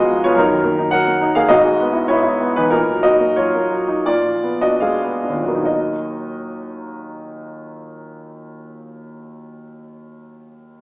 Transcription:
0.00 0.34 G#2 medium
0.00 0.10 F3 soft
0.00 0.38 G#3 soft
0.00 0.24 B3 soft
0.00 0.21 F#4 medium
0.00 0.39 G#4 medium
0.00 0.23 D#5 medium
0.00 0.38 F5 medium
0.10 0.32 F3 soft
0.24 0.37 B3 medium
0.24 0.37 F4 medium
0.24 0.37 C#5 medium
0.34 1.46 F#2 medium
0.34 0.77 D#4 medium
0.34 0.90 A#4 medium
0.51 0.73 D#3 soft
0.64 0.87 A#3 soft
0.79 1.01 D#4 soft
0.91 1.15 F#3 soft
0.91 1.32 A#4 medium
0.91 1.35 F#5 medium
1.07 1.30 A#3 soft
1.21 1.45 D#4 soft
1.35 1.50 A#3 soft
1.35 1.49 G#4 medium
1.35 1.50 F5 medium
1.49 2.68 G#2 medium
1.49 2.06 F#4 medium
1.49 2.09 D#5 medium
1.65 1.89 G#3 soft
1.80 2.04 B3 soft
1.93 2.08 E4 soft
2.08 2.35 B3 soft
2.08 2.22 E4 medium
2.08 2.56 C#5 medium
2.23 2.49 E4 soft
2.41 2.66 B3 soft
2.56 2.72 E3 soft
2.56 2.70 D#4 soft
2.56 2.72 B4 medium
2.71 4.01 A#2 medium
2.71 3.01 D#4 medium
2.71 3.03 A#4 medium
2.89 3.14 F#3 soft
3.03 3.30 D#4 soft
3.03 3.34 F#4 medium
3.03 3.36 D#5 medium
3.20 3.46 A#3 soft
3.36 3.64 F#3 soft
3.36 4.02 F4 medium
3.36 4.06 C#5 medium
3.55 3.81 A#3 soft
3.70 3.98 F#3 soft
3.88 4.06 D#4 soft
4.06 5.34 A#2 soft
4.06 4.58 F4 soft
4.06 4.61 D5 medium
4.25 4.54 F3 soft
4.43 4.73 B3 soft
4.61 4.93 D4 soft
4.61 4.80 F#4 soft
4.61 4.81 D#5 medium
4.80 5.15 G#3 soft
4.80 5.63 G#4 soft
4.80 5.66 F5 medium
5.03 5.37 B3 soft
5.24 5.58 D4 soft
5.29 9.92 D#2 soft
5.36 9.99 A#2 soft
5.42 10.05 F#3 soft
5.42 5.66 B3 soft
5.48 10.11 A#3 soft
5.55 10.18 D#4 soft
5.61 10.24 F#4 soft
5.65 10.28 D#5 soft

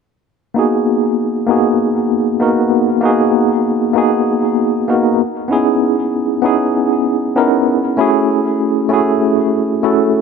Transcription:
0.54 1.44 A#3 medium
0.54 1.45 B3 medium
0.54 1.45 D#4 medium
0.54 1.46 F#4 medium
0.59 1.47 G#4 medium
1.47 2.37 A#3 medium
1.47 2.38 B3 medium
1.47 2.38 D#4 medium
1.47 2.39 F#4 medium
1.51 2.39 G#4 medium
2.40 2.60 A#3 medium
2.40 2.61 B3 medium
2.40 2.61 D#4 medium
2.40 2.61 F#4 medium
2.40 2.62 A#4 medium
3.01 3.91 A#3 medium
3.01 3.92 B3 medium
3.01 3.92 D#4 medium
3.01 3.93 F#4 medium
3.05 3.94 G#4 medium
3.93 4.84 A#3 medium
3.93 4.85 B3 medium
3.93 4.85 D#4 medium
3.93 4.85 F#4 medium
3.98 4.86 G#4 medium
4.88 5.08 A#3 medium
4.88 5.08 B3 medium
4.88 5.09 D#4 medium
4.88 5.09 F#4 medium
4.88 5.09 A#4 medium
5.48 6.39 B3 medium
5.48 6.39 C#4 medium
5.48 6.40 D#4 medium
5.48 6.40 E4 medium
5.52 6.41 G#4 medium
6.42 7.32 B3 medium
6.42 7.32 C#4 medium
6.42 7.33 D#4 medium
6.42 7.33 E4 medium
6.42 7.34 G#4 medium
7.36 7.56 B3 medium
7.36 7.56 C#4 medium
7.36 7.56 D#4 medium
7.36 7.56 E4 medium
7.36 7.57 A#4 medium
7.97 8.87 A3 medium
7.97 8.87 C#4 medium
7.97 8.88 E4 medium
7.97 8.88 F#4 medium
7.97 8.89 G#4 medium
8.89 9.79 A3 medium
8.89 9.80 C#4 medium
8.89 9.80 E4 medium
8.89 9.81 F#4 medium
8.93 9.81 G#4 medium
9.83 10.03 A3 medium
9.83 10.03 C#4 medium
9.83 10.03 E4 medium
9.83 10.04 F#4 medium
9.83 10.04 A4 medium

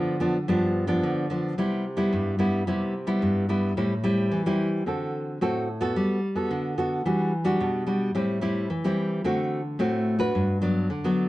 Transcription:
0.00 0.46 D3 medium
0.00 0.16 F3 medium
0.00 0.16 B3 medium
0.00 0.16 D4 medium
0.20 0.37 F3 medium
0.20 0.37 B3 medium
0.20 0.37 D4 medium
0.48 1.00 G2 medium
0.48 0.85 F3 medium
0.48 0.85 B3 medium
0.48 0.85 D4 medium
0.87 1.25 F3 medium
0.87 1.25 B3 medium
0.87 1.26 D4 medium
1.03 1.55 D3 medium
1.30 1.53 F3 medium
1.30 1.53 B3 medium
1.30 1.53 D4 medium
1.58 2.10 C3 medium
1.58 1.84 G3 medium
1.58 1.84 B3 medium
1.58 1.84 E4 medium
1.97 2.34 G3 medium
1.97 2.35 B3 medium
1.97 2.35 E4 medium
2.13 2.65 G2 medium
2.39 2.62 G3 medium
2.39 2.63 B3 medium
2.39 2.63 E4 medium
2.67 3.19 C3 medium
2.67 2.93 G3 medium
2.67 2.93 B3 medium
2.67 2.93 E4 medium
3.07 3.44 G3 medium
3.07 3.44 B3 medium
3.07 3.45 E4 medium
3.22 3.74 G2 medium
3.49 3.72 G3 medium
3.49 3.72 B3 medium
3.49 3.73 E4 medium
3.77 4.29 A2 medium
3.77 3.93 G3 medium
3.77 3.93 C4 medium
3.77 3.93 E4 medium
4.04 4.41 G3 medium
4.04 4.41 C4 medium
4.04 4.41 E4 medium
4.32 4.84 E3 medium
4.46 4.83 G3 medium
4.46 4.83 C4 medium
4.46 4.83 E4 medium
4.86 5.38 D3 medium
4.86 5.37 C4 medium
4.86 5.37 F#4 medium
4.86 5.37 A4 medium
5.41 5.93 A2 medium
5.41 5.67 C4 medium
5.41 5.67 F#4 medium
5.41 5.67 A4 medium
5.81 6.18 B3 medium
5.81 6.18 F#4 medium
5.81 6.19 A4 medium
5.96 6.48 G3 medium
6.35 6.73 B3 medium
6.35 6.73 F#4 medium
6.35 6.73 A4 medium
6.50 7.03 D3 medium
6.77 7.01 B3 medium
6.77 7.01 F#4 medium
6.77 7.01 A4 medium
7.05 7.57 E3 medium
7.05 7.31 G3 medium
7.05 7.31 D4 medium
7.05 7.31 F#4 medium
7.44 7.82 G3 medium
7.44 7.82 D4 medium
7.44 7.83 F#4 medium
7.60 8.12 B2 medium
7.86 8.10 G3 medium
7.86 8.10 D4 soft
7.86 8.10 F#4 medium
8.15 8.67 A2 medium
8.15 8.38 G3 medium
8.15 8.38 C4 medium
8.15 8.38 E4 medium
8.41 8.68 G3 medium
8.41 8.68 C4 medium
8.41 8.68 E4 medium
8.70 9.22 E3 medium
8.84 9.21 G3 medium
8.84 9.21 C4 medium
8.84 9.21 E4 medium
9.24 9.77 D3 medium
9.24 9.60 A3 medium
9.24 9.60 C4 medium
9.24 9.60 F#4 medium
9.79 10.31 A2 medium
9.79 10.16 A3 medium
9.79 10.17 C4 medium
9.79 10.17 F#4 medium
10.19 10.56 D4 medium
10.19 10.57 F#4 medium
10.19 10.57 B4 medium
10.35 10.87 G2 medium
10.62 10.87 F#3 medium
10.62 10.88 B3 medium
10.62 10.88 D4 medium
10.90 11.29 D3 medium
11.04 11.29 F#3 medium
11.04 11.29 B3 medium
11.04 11.29 D4 medium

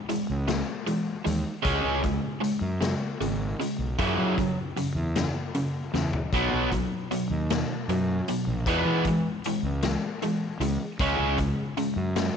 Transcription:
0.09 0.44 E3 medium
0.09 0.44 G#3 medium
0.09 closed hi-hat soft
0.29 0.61 C#2 medium
0.48 0.83 E3 medium
0.48 0.83 G#3 medium
0.48 snare medium
0.48 closed hi-hat medium
0.87 1.22 E3 medium
0.87 1.22 G#3 medium
0.87 closed hi-hat medium
1.25 1.42 D#2 medium
1.25 1.61 E3 medium
1.25 1.61 G#3 medium
1.25 closed hi-hat medium
1.63 1.81 C#2 medium
1.63 2.01 C#3 medium
1.63 2.01 G#3 medium
1.63 2.01 C#4 medium
1.63 kick medium
1.63 closed hi-hat medium
1.84 2.16 C#2 medium
2.03 2.38 C#3 medium
2.03 2.39 G#3 medium
2.03 kick medium
2.03 closed hi-hat medium
2.41 2.77 C#3 medium
2.41 2.77 G#3 medium
2.41 closed hi-hat medium
2.61 2.94 F#2 medium
2.81 3.16 C#3 medium
2.81 3.17 G#3 medium
2.81 snare medium
2.81 closed hi-hat medium
3.20 3.53 G#1 medium
3.20 3.56 C#3 medium
3.20 3.56 G#3 medium
3.20 closed hi-hat medium
3.60 3.95 C#3 medium
3.60 3.95 G#3 medium
3.60 closed hi-hat medium
3.79 3.95 B1 medium
3.99 4.15 F#2 medium
3.99 4.35 F#2 medium
3.99 4.35 C#3 medium
3.99 4.36 E3 medium
3.99 kick medium
3.99 closed hi-hat medium
4.18 4.50 F#3 medium
4.38 4.73 F#2 medium
4.38 4.73 C#3 medium
4.38 kick medium
4.38 closed hi-hat medium
4.77 5.12 F#2 medium
4.77 5.12 C#3 medium
4.77 closed hi-hat soft
4.95 5.28 E2 medium
5.16 5.51 F#2 medium
5.16 5.51 C#3 medium
5.16 snare medium
5.16 closed hi-hat medium
5.55 5.90 F#2 medium
5.55 5.90 C#3 medium
5.55 closed hi-hat medium
5.94 6.10 E2 medium
5.94 6.29 F#2 medium
5.94 6.29 C#3 medium
5.94 snare soft
6.13 floor tom medium
6.33 6.49 B1 medium
6.33 6.70 B2 medium
6.33 6.70 F#3 medium
6.33 6.70 B3 medium
6.33 kick medium
6.33 closed hi-hat medium
6.53 6.85 B1 medium
6.72 7.06 B2 medium
6.72 7.07 F#3 medium
6.72 kick medium
6.72 closed hi-hat medium
7.11 7.46 B2 medium
7.11 7.46 F#3 medium
7.11 closed hi-hat soft
7.30 7.62 D#2 medium
7.50 7.85 B2 medium
7.50 7.85 F#3 medium
7.50 snare medium
7.50 closed hi-hat medium
7.88 8.20 F#2 medium
7.88 8.24 B2 medium
7.88 8.24 F#3 medium
7.88 closed hi-hat medium
8.28 8.63 B2 medium
8.28 8.63 F#3 medium
8.28 closed hi-hat medium
8.47 8.63 A#1 medium
8.66 8.82 E2 medium
8.66 9.03 E3 medium
8.66 9.03 G#3 medium
8.66 9.04 B3 medium
8.66 kick medium
8.66 closed hi-hat medium
8.85 9.17 E3 medium
9.05 9.41 E3 medium
9.05 9.41 G#3 medium
9.05 kick medium
9.05 closed hi-hat medium
9.44 9.80 E3 medium
9.44 9.80 G#3 medium
9.44 closed hi-hat medium
9.63 9.95 C#2 medium
9.83 10.18 E3 medium
9.83 10.18 G#3 medium
9.83 snare medium
9.83 closed hi-hat medium
10.22 10.57 E3 medium
10.22 10.57 G#3 medium
10.22 closed hi-hat medium
10.60 10.76 C#2 medium
10.60 10.96 E3 medium
10.60 10.96 G#3 medium
10.60 closed hi-hat medium
10.99 11.16 C#2 medium
10.99 11.36 C#3 medium
10.99 11.37 G#3 medium
10.99 11.37 C#4 medium
10.99 kick medium
10.99 closed hi-hat medium
11.18 11.51 C#2 medium
11.38 11.73 C#3 medium
11.38 11.73 G#3 medium
11.38 kick medium
11.38 closed hi-hat medium
11.77 12.12 C#3 medium
11.77 12.12 G#3 medium
11.77 closed hi-hat soft
11.96 12.28 F#2 medium
12.16 12.37 C#3 medium
12.16 12.37 G#3 medium
12.16 snare medium
12.16 closed hi-hat medium

